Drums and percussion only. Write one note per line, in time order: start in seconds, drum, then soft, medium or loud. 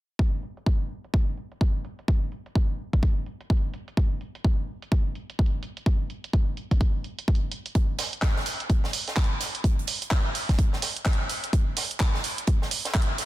0.19 kick loud
0.43 closed hi-hat soft
0.57 closed hi-hat soft
0.66 kick loud
1.04 closed hi-hat soft
1.14 kick loud
1.37 closed hi-hat soft
1.52 closed hi-hat soft
1.61 kick loud
1.68 closed hi-hat medium
1.85 closed hi-hat medium
1.99 closed hi-hat soft
2.08 kick loud
2.32 closed hi-hat soft
2.46 closed hi-hat soft
2.55 kick loud
2.93 kick medium
2.93 closed hi-hat soft
3.03 kick loud
3.03 closed hi-hat medium
3.26 closed hi-hat soft
3.41 closed hi-hat soft
3.50 kick loud
3.50 closed hi-hat soft
3.57 closed hi-hat medium
3.74 closed hi-hat medium
3.88 closed hi-hat soft
3.97 kick loud
3.97 closed hi-hat medium
4.21 closed hi-hat soft
4.35 closed hi-hat soft
4.44 kick loud
4.44 closed hi-hat medium
4.82 closed hi-hat soft
4.92 kick loud
4.92 closed hi-hat medium
5.15 closed hi-hat soft
5.30 closed hi-hat soft
5.39 kick loud
5.39 closed hi-hat soft
5.46 closed hi-hat medium
5.63 closed hi-hat medium
5.77 closed hi-hat soft
5.86 kick loud
5.86 closed hi-hat medium
6.10 closed hi-hat soft
6.24 closed hi-hat soft
6.33 kick loud
6.33 closed hi-hat medium
6.57 closed hi-hat soft
6.71 kick medium
6.71 closed hi-hat soft
6.81 kick loud
6.81 closed hi-hat medium
7.04 closed hi-hat soft
7.19 closed hi-hat soft
7.28 kick loud
7.28 closed hi-hat soft
7.35 closed hi-hat medium
7.51 closed hi-hat medium
7.66 closed hi-hat soft
7.75 kick loud
7.75 closed hi-hat medium
7.98 snare soft
7.98 closed hi-hat medium
7.98 open hi-hat loud
8.13 closed hi-hat soft
8.22 kick loud
8.22 snare loud
8.22 clap loud
8.22 closed hi-hat medium
8.36 snare soft
8.46 closed hi-hat medium
8.46 open hi-hat medium
8.60 closed hi-hat soft
8.70 kick loud
8.70 closed hi-hat medium
8.84 snare soft
8.93 closed hi-hat medium
8.93 open hi-hat medium
9.08 snare soft
9.08 closed hi-hat soft
9.16 kick loud
9.16 snare loud
9.16 clap loud
9.16 closed hi-hat soft
9.16 closed hi-hat medium
9.24 closed hi-hat medium
9.40 snare soft
9.40 closed hi-hat medium
9.40 open hi-hat medium
9.55 closed hi-hat soft
9.64 kick loud
9.64 closed hi-hat medium
9.79 closed hi-hat soft
9.87 closed hi-hat medium
9.87 open hi-hat medium
10.02 closed hi-hat soft
10.11 kick loud
10.11 snare loud
10.11 clap loud
10.11 closed hi-hat medium
10.35 closed hi-hat medium
10.35 open hi-hat medium
10.49 kick medium
10.49 snare soft
10.49 closed hi-hat soft
10.59 kick loud
10.59 closed hi-hat medium
10.73 snare soft
10.82 snare soft
10.82 closed hi-hat medium
10.82 open hi-hat medium
10.96 closed hi-hat soft
11.05 kick loud
11.05 snare loud
11.05 clap loud
11.05 closed hi-hat medium
11.05 closed hi-hat soft
11.13 closed hi-hat medium
11.29 closed hi-hat medium
11.29 open hi-hat medium
11.44 closed hi-hat soft
11.53 kick loud
11.53 closed hi-hat medium
11.77 snare soft
11.77 closed hi-hat medium
11.77 open hi-hat loud
11.91 closed hi-hat soft
12.00 kick loud
12.00 snare loud
12.00 clap loud
12.00 closed hi-hat medium
12.14 snare soft
12.24 closed hi-hat medium
12.24 open hi-hat medium
12.38 closed hi-hat soft
12.47 kick loud
12.47 closed hi-hat medium
12.62 snare soft
12.71 closed hi-hat medium
12.71 open hi-hat medium
12.85 snare soft
12.85 closed hi-hat medium
12.94 kick loud
12.94 snare loud
12.94 clap loud
12.94 closed hi-hat soft
12.94 closed hi-hat medium
13.02 closed hi-hat medium
13.18 snare soft
13.18 closed hi-hat medium
13.18 open hi-hat medium